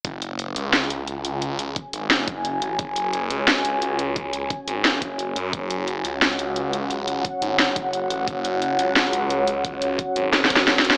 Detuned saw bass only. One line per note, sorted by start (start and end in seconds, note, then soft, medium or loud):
0.05 0.55 F#1 medium
0.56 0.89 C#2 medium
0.90 1.75 C#2 loud
1.93 2.09 G#1 loud
2.10 2.61 F#1 medium
2.62 2.78 A1 loud
2.79 3.29 F#1 medium
3.31 3.63 C#2 loud
3.65 4.49 C#2 loud
4.68 4.83 G#1 medium
4.85 5.35 F#1 medium
5.36 5.52 F#2 loud
5.53 6.03 F#1 loud
6.05 6.38 C#2 medium
6.39 7.23 C#2 loud
7.42 7.58 G#1 loud
7.59 8.09 F#1 loud
8.10 8.26 A1 loud
8.28 8.78 F#1 loud
8.79 9.12 C#2 loud
9.13 9.98 C#2 loud
10.16 10.32 G#1 medium
10.33 10.83 F#1 loud
10.85 10.97 F#1 loud